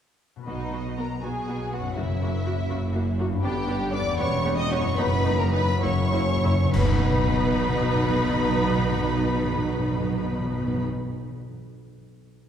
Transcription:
0.36 harp B2 B3
0.40 harp F#4 B4
0.47 tuba B1, double bass section B1, cello section B2, timpani B2, viola section B3 F#4, violin section D#4 D#5
0.72 viola section B3 F#4
0.97 viola section B3 F#4, violin section A#4 A#5
1.22 double bass section B1, tuba B1, cello section B2, viola section B3 F#4, violin section G#4 G#5
1.48 viola section B3 F#4
1.72 viola section B3 F#4, violin section F#4 F#5
1.78 harp F#2
1.83 harp C#4
1.87 harp F#4
1.92 tuba F#1, cello section F#2, harp A#4, violin section E5
1.96 double bass section F#1, timpani F#2, viola section A#3 F#4, violin section E4
2.22 viola section A#3 F#4
2.45 viola section A#3 F#4
2.69 tuba F#1, double bass section F#1, cello section F#2, viola section A#3 F#4
2.93 viola section A#3 F#4
3.18 viola section A#3 F#4
3.24 harp G2
3.29 harp B3
3.33 harp D4
3.38 tuba G1, double bass section G1, violin section G4, harp B4
3.42 cello section G2, viola section B3 D4, violin section G5
3.68 viola section B3 D4
3.92 viola section B3 D4, violin section D5 D6
4.00 harp E2
4.05 harp B3
4.09 harp C#4
4.14 cello section E2, harp G4, viola section G4, violin section C#5 C#6
4.18 tuba E1, double bass section E1, viola section B3
4.44 viola section B3 G4
4.56 violin section D#5 D#6
4.69 viola section B3 G4, violin section C#5 C#6
4.80 harp F#2
4.84 harp B3
4.89 harp D#4
4.93 harp F#4, violin section B4
4.97 tuba F#1, double bass section F#1, cello section F#2, timpani F#2, viola section B3 D#4, violin section B5
5.25 viola section B3 D#4
5.38 violin section A#4 A#5
5.52 viola section B3 D#4, violin section B4 B5
5.64 harp F#2
5.69 harp A#3
5.73 harp E4
5.78 harp F#4, violin section C#5
5.82 double bass section F#1, tuba F#1, cello section F#2, viola section A#3 E4, violin section C#6
5.91 timpani F#2
6.00 timpani F#2
6.09 timpani F#2, viola section A#3 E4
6.18 timpani F#2
6.27 timpani F#2
6.37 timpani F#2
6.43 timpani F#2, viola section A#3 E4
6.55 timpani F#2
6.65 timpani F#2
6.74 double bass section B1, tuba B1, cello section B2, harp B2, timpani B2, viola section B3 D#4, violin section B4 B5, concert bass drum, crash
6.80 timpani B2, harp B3
6.87 timpani B2, harp D#4
6.93 timpani B2, harp F#4
7.00 timpani B2, harp D#5
7.06 timpani B2
7.13 timpani B2
7.20 timpani B2
7.27 timpani B2
7.34 timpani B2
7.41 timpani B2
7.47 timpani B2
7.54 timpani B2
7.60 timpani B2
7.68 timpani B2
7.75 timpani B2
7.81 timpani B2
7.88 timpani B2
7.95 timpani B2
8.02 timpani B2
8.09 timpani B2
8.16 timpani B2
8.23 timpani B2
8.29 timpani B2
8.36 timpani B2
8.42 timpani B2
8.49 timpani B2
8.56 timpani B2
8.63 timpani B2
8.70 timpani B2
8.76 timpani B2
8.83 timpani B2
8.90 timpani B2
8.97 timpani B2
9.04 timpani B2
9.11 timpani B2
9.17 timpani B2
9.24 timpani B2
9.31 timpani B2
9.38 timpani B2
9.45 timpani B2
9.52 timpani B2
9.58 timpani B2
9.65 timpani B2
9.72 timpani B2
9.79 timpani B2
9.85 timpani B2
9.92 timpani B2
9.98 timpani B2
10.04 timpani B2
10.11 timpani B2
10.17 timpani B2
10.24 timpani B2
10.31 timpani B2
10.39 timpani B2
10.46 timpani B2
10.52 timpani B2
10.59 timpani B2
10.66 timpani B2
10.73 timpani B2
10.80 timpani B2

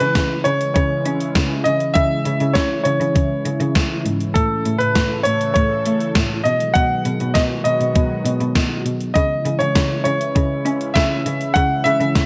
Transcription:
Already playing: analog synth pad C#3 E3 G#3 C#4 E4
0.00 cello C#3, grand piano B4, closed hi-hat
0.15 cello C#3, kick, snare, closed hi-hat
0.44 cello C#3, grand piano C#5, closed hi-hat
0.61 closed hi-hat
0.74 cello C#3, grand piano C#5, kick, closed hi-hat
1.06 cello C#4, closed hi-hat
1.20 closed hi-hat
1.35 cello C#3, kick, snare, closed hi-hat
1.64 cello C#3, grand piano D#5, closed hi-hat
1.80 closed hi-hat
1.94 cello C#3, grand piano E5, kick, closed hi-hat
2.25 cello C#3, closed hi-hat
2.40 cello C#3, closed hi-hat
2.53 cello C#3, grand piano C#5, kick, snare, closed hi-hat
2.84 cello C#3, grand piano C#5, closed hi-hat
3.00 cello C#3, closed hi-hat
3.16 cello C#3, kick, closed hi-hat
3.45 cello C#3, closed hi-hat
3.60 cello C#3, closed hi-hat
3.75 cello C#3, kick, snare, closed hi-hat
4.05 cello G#2, closed hi-hat
4.20 closed hi-hat
4.34 cello A2, analog synth pad C#3 A3 A4, grand piano A4, kick, closed hi-hat
4.65 cello A2, closed hi-hat
4.78 cello A2, grand piano B4, closed hi-hat
4.95 cello A2, kick, snare, closed hi-hat
5.23 cello A2, grand piano C#5, closed hi-hat
5.41 closed hi-hat
5.54 cello A2, grand piano C#5, kick, closed hi-hat
5.86 cello A3, closed hi-hat
6.00 closed hi-hat
6.15 cello A2, kick, snare, closed hi-hat
6.44 cello B2, analog synth pad D#3 F#3 G#3 B3 F#4, grand piano D#5, closed hi-hat
6.60 closed hi-hat
6.74 cello B2, grand piano F#5, kick, closed hi-hat
7.05 cello B2, closed hi-hat
7.20 cello B2, closed hi-hat
7.34 cello B2, grand piano D#5, kick, snare, closed hi-hat
7.64 cello B2, grand piano D#5, closed hi-hat
7.80 cello B2, closed hi-hat
7.95 cello B2, kick, closed hi-hat
8.25 cello B2, closed hi-hat
8.40 cello B2, closed hi-hat
8.55 cello B2, kick, snare, closed hi-hat
8.85 cello B2, closed hi-hat
9.01 closed hi-hat
9.14 cello C#3, analog synth pad C#3 E3 G#3 C#4 E4, grand piano D#5, kick, closed hi-hat
9.45 cello C#3, closed hi-hat
9.59 cello C#3, grand piano C#5, closed hi-hat
9.75 cello C#3, kick, snare, closed hi-hat
10.04 cello C#3, grand piano C#5, closed hi-hat
10.21 closed hi-hat
10.36 cello C#3, kick, closed hi-hat
10.66 cello C#4, closed hi-hat
10.81 closed hi-hat
10.94 cello C#3, grand piano E5, kick, snare, closed hi-hat
11.26 cello C#3, closed hi-hat
11.41 closed hi-hat
11.54 cello C#3, grand piano F#5, kick, closed hi-hat
11.84 cello C#3, grand piano E5, closed hi-hat
12.01 cello C#3, closed hi-hat
12.15 cello C#3, kick, snare, closed hi-hat

